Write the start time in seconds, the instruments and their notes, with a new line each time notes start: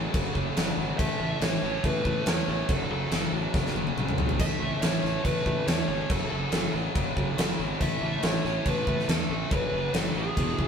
Already playing: distorted electric guitar F#2 C#3 F#3 A3
0.14 fingered electric bass F#1, distorted electric guitar F#2 C#3 F#3, kick, crash
0.35 fingered electric bass F#1, distorted electric guitar F#2 C#3 F#3, kick
0.57 fingered electric bass F#1, distorted electric guitar F#2 C#3 F#3, snare, crash
0.77 fingered electric bass G#1, distorted electric guitar F#2 C#3 F#3
0.98 fingered electric bass A1, distorted electric guitar A2 E3 A3, lead electric guitar E5, kick, crash
1.20 fingered electric bass A1, distorted electric guitar A2 E3 A3
1.41 fingered electric bass A1, distorted electric guitar A2 E3 A3, lead electric guitar C#5, snare, crash
1.62 fingered electric bass A1, distorted electric guitar A2 E3 A3
1.84 fingered electric bass A1, distorted electric guitar A2 E3 A3, lead electric guitar B4, kick, crash
2.05 fingered electric bass A1, distorted electric guitar A2 E3 A3, kick
2.26 fingered electric bass E2, distorted electric guitar A2 E3 A3, lead electric guitar C#5, snare, crash
2.47 fingered electric bass A1, distorted electric guitar A2 E3 A3, lead electric guitar C#5
2.69 fingered electric bass F#1, distorted electric guitar F#2 C#3 F#3, lead electric guitar A4, kick, crash
2.90 fingered electric bass F#1, distorted electric guitar F#2 C#3 F#3, lead electric guitar A4
3.11 fingered electric bass F#1, distorted electric guitar F#2 C#3 F#3, snare, crash
3.32 fingered electric bass A1, distorted electric guitar F#2 C#3 F#3
3.54 fingered electric bass F#1, distorted electric guitar F#2 C#3 F#3, kick, snare
3.66 snare
3.75 fingered electric bass F#1, distorted electric guitar F#2 C#3 F#3, high tom
3.87 high tom
3.97 fingered electric bass F#1, distorted electric guitar F#2 C#3 F#3, mid tom
4.08 mid tom
4.18 fingered electric bass B1, distorted electric guitar F#2 C#3 F#3, floor tom
4.29 floor tom
4.39 fingered electric bass A1, distorted electric guitar A2 E3 A3, lead electric guitar E5, kick, splash, crash
4.60 fingered electric bass A1, distorted electric guitar A2 E3 A3
4.81 fingered electric bass A1, distorted electric guitar A2 E3 A3, lead electric guitar C#5, snare, crash
5.02 fingered electric bass A1, distorted electric guitar A2 E3 A3, snare
5.24 fingered electric bass A1, distorted electric guitar A2 E3 A3, lead electric guitar B4, kick, crash
5.45 fingered electric bass A1, distorted electric guitar A2 E3 A3, kick
5.67 fingered electric bass E2, distorted electric guitar A2 E3 A3, lead electric guitar C#5, snare, crash
5.88 fingered electric bass G#1, distorted electric guitar A2 E3 A3, lead electric guitar C#5
6.10 fingered electric bass F#1, distorted electric guitar F#2 C#3 F#3, lead electric guitar A4, kick, crash
6.31 fingered electric bass F#1, distorted electric guitar F#2 C#3 F#3, lead electric guitar A4
6.52 fingered electric bass F#1, distorted electric guitar F#2 C#3 F#3, snare, crash
6.73 fingered electric bass A1, distorted electric guitar F#2 C#3 F#3
6.95 fingered electric bass F#1, distorted electric guitar F#2 C#3 F#3, kick, crash
7.15 fingered electric bass F#1, distorted electric guitar F#2 C#3 F#3, kick
7.37 fingered electric bass F#1, distorted electric guitar F#2 C#3 F#3, snare, crash
7.59 fingered electric bass G#1, distorted electric guitar F#2 C#3 F#3
7.80 fingered electric bass A1, distorted electric guitar A2 E3 A3, lead electric guitar E5, kick, crash
8.01 fingered electric bass A1, distorted electric guitar A2 E3 A3
8.23 fingered electric bass A1, distorted electric guitar A2 E3 A3, lead electric guitar C#5, snare, crash
8.44 fingered electric bass A1, distorted electric guitar A2 E3 A3, snare
8.65 fingered electric bass A1, distorted electric guitar A2 E3 A3, lead electric guitar B4, kick, crash
8.87 fingered electric bass A1, distorted electric guitar A2 E3 A3, kick
8.99 snare
9.08 fingered electric bass E2, distorted electric guitar A2 E3 A3, lead electric guitar A4, snare, crash
9.29 fingered electric bass A1, distorted electric guitar A2 E3 A3, lead electric guitar A4
9.51 fingered electric bass F#1, distorted electric guitar F#2 C#3 F#3, lead electric guitar B4, kick, crash
9.72 fingered electric bass F#1, distorted electric guitar F#2 C#3 F#3
9.93 fingered electric bass F#1, distorted electric guitar F#2 C#3 F#3, lead electric guitar A4, snare, crash
10.15 fingered electric bass A1, distorted electric guitar F#2 C#3 F#3, lead electric guitar G#4
10.36 fingered electric bass E1, distorted electric guitar E2 B2 E3, kick, crash
10.59 fingered electric bass E1, distorted electric guitar E2 B2 E3, kick